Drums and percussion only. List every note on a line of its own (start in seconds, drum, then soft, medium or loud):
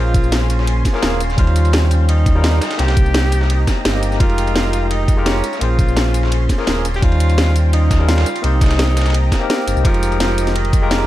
0.14 kick loud
0.14 closed hi-hat medium
0.14 ride medium
0.14 tambourine medium
0.24 tambourine soft
0.32 snare loud
0.32 closed hi-hat loud
0.32 ride medium
0.50 closed hi-hat medium
0.50 ride medium
0.50 tambourine medium
0.59 snare medium
0.67 closed hi-hat loud
0.67 ride medium
0.85 kick medium
0.85 snare soft
0.85 closed hi-hat medium
0.85 ride medium
0.85 tambourine medium
0.94 snare medium
1.02 snare loud
1.02 closed hi-hat loud
1.02 ride medium
1.20 closed hi-hat medium
1.20 ride medium
1.20 tambourine medium
1.30 snare soft
1.30 tambourine soft
1.38 kick loud
1.38 closed hi-hat loud
1.38 ride medium
1.47 ride soft
1.56 closed hi-hat medium
1.56 ride medium
1.56 tambourine medium
1.65 ride soft
1.65 tambourine soft
1.73 snare loud
1.73 closed hi-hat loud
1.73 ride medium
1.91 closed hi-hat medium
1.91 ride medium
1.91 tambourine medium
2.09 closed hi-hat medium
2.09 ride medium
2.26 kick loud
2.26 closed hi-hat medium
2.26 ride medium
2.26 tambourine medium
2.44 snare loud
2.44 closed hi-hat loud
2.44 ride medium
2.62 snare loud
2.62 closed hi-hat medium
2.62 ride medium
2.62 tambourine medium
2.71 snare loud
2.71 ride medium
2.71 tambourine soft
2.79 snare loud
2.79 closed hi-hat medium
2.79 ride medium
2.88 snare loud
2.88 ride medium
2.97 kick loud
2.97 closed hi-hat medium
2.97 ride medium
2.97 tambourine medium
3.06 tambourine soft
3.14 snare loud
3.14 closed hi-hat medium
3.14 ride medium
3.32 closed hi-hat medium
3.32 ride medium
3.32 tambourine medium
3.41 snare medium
3.50 closed hi-hat medium
3.50 ride medium
3.67 kick medium
3.67 snare loud
3.67 snare soft
3.67 closed hi-hat medium
3.67 ride medium
3.67 tambourine medium
3.85 snare loud
3.85 closed hi-hat medium
3.85 ride medium
4.03 closed hi-hat medium
4.03 ride medium
4.03 tambourine medium
4.12 snare soft
4.12 tambourine soft
4.20 kick loud
4.20 closed hi-hat medium
4.20 ride medium
4.30 ride soft
4.38 closed hi-hat medium
4.38 ride medium
4.38 tambourine medium
4.47 ride soft
4.47 tambourine soft
4.56 snare loud
4.56 closed hi-hat medium
4.56 ride medium
4.73 closed hi-hat medium
4.73 ride medium
4.73 tambourine medium
4.91 closed hi-hat medium
4.91 ride medium
5.08 kick loud
5.08 closed hi-hat medium
5.08 ride medium
5.08 tambourine medium
5.26 snare loud
5.26 closed hi-hat medium
5.26 ride medium
5.44 closed hi-hat medium
5.44 ride medium
5.44 tambourine medium
5.53 snare soft
5.53 tambourine soft
5.61 closed hi-hat medium
5.61 ride medium
5.79 kick loud
5.79 closed hi-hat medium
5.79 ride medium
5.79 tambourine medium
5.88 tambourine soft
5.97 snare loud
5.97 closed hi-hat medium
5.97 ride medium
6.14 closed hi-hat medium
6.14 ride medium
6.14 tambourine medium
6.23 snare medium
6.32 closed hi-hat medium
6.32 ride medium
6.49 kick medium
6.49 snare soft
6.49 closed hi-hat medium
6.49 ride medium
6.49 tambourine medium
6.59 snare medium
6.67 snare loud
6.67 closed hi-hat medium
6.67 ride medium
6.85 closed hi-hat medium
6.85 ride medium
6.85 tambourine medium
6.94 snare soft
6.94 tambourine soft
7.02 kick loud
7.02 closed hi-hat loud
7.02 ride medium
7.12 ride soft
7.20 closed hi-hat medium
7.20 ride medium
7.20 tambourine medium
7.29 ride soft
7.29 tambourine soft
7.38 snare loud
7.38 closed hi-hat medium
7.38 ride medium
7.56 closed hi-hat medium
7.56 ride medium
7.56 tambourine medium
7.73 closed hi-hat medium
7.73 ride medium
7.91 kick loud
7.91 snare loud
7.91 closed hi-hat medium
7.91 ride medium
7.91 tambourine medium
8.09 snare loud
8.09 closed hi-hat medium
8.09 ride medium
8.18 snare loud
8.18 ride medium
8.26 closed hi-hat medium
8.26 tambourine medium
8.36 ride medium
8.36 tambourine soft
8.44 closed hi-hat loud
8.44 ride medium
8.61 kick loud
8.61 snare medium
8.61 closed hi-hat medium
8.61 ride medium
8.61 tambourine medium
8.66 snare medium
8.66 ride medium
8.71 snare loud
8.71 ride medium
8.71 tambourine soft
8.79 snare loud
8.79 closed hi-hat medium
8.79 ride medium
8.97 snare medium
8.97 closed hi-hat medium
8.97 ride medium
8.97 tambourine medium
9.01 snare medium
9.01 ride medium
9.06 snare medium
9.06 ride medium
9.06 tambourine soft
9.10 snare medium
9.10 ride medium
9.14 closed hi-hat loud
9.14 ride medium
9.32 kick medium
9.32 snare loud
9.32 snare soft
9.32 closed hi-hat medium
9.32 ride medium
9.32 tambourine medium
9.50 snare loud
9.50 closed hi-hat loud
9.50 ride medium
9.67 closed hi-hat medium
9.67 ride medium
9.67 tambourine medium
9.77 tambourine soft
9.85 kick loud
9.85 closed hi-hat loud
9.85 ride medium
9.94 closed hi-hat soft
9.94 ride soft
10.03 closed hi-hat medium
10.03 ride medium
10.03 tambourine medium
10.12 ride soft
10.12 tambourine soft
10.20 snare loud
10.20 closed hi-hat loud
10.20 ride medium
10.38 closed hi-hat medium
10.38 ride medium
10.38 tambourine medium
10.47 snare soft
10.47 closed hi-hat soft
10.47 tambourine soft
10.55 closed hi-hat medium
10.55 ride medium
10.65 closed hi-hat soft
10.73 kick loud
10.73 closed hi-hat medium
10.73 ride medium
10.73 tambourine medium
10.91 snare loud
10.91 closed hi-hat loud
10.91 ride medium